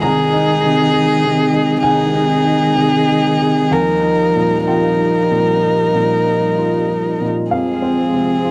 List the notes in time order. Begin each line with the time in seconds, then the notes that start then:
0.01 C2 D#3 G#3 D#4 G#4 D#5 A#5
0.33 D#4
0.63 C3
0.93 D#4
1.24 C3
1.53 D#4
1.83 C2 D#3 D#4 G#4 G#5
2.14 C3
2.45 D#4
2.76 C3
3.08 D#4
3.39 C3
3.71 D#2 F3 G3 D#4 F4 A#4 D#5 G#5
4.03 D#4
4.36 A#2
4.66 F3 D#4 F4 A#4 G5
4.99 D#4
5.31 A#2
5.63 D#4
5.94 A#2
6.27 D#4
6.58 F4
6.89 D#4
7.21 A#2
7.51 F2 F3 G#3 C4 F4 G#4 C5 F5
7.82 C4
8.14 C3
8.45 F4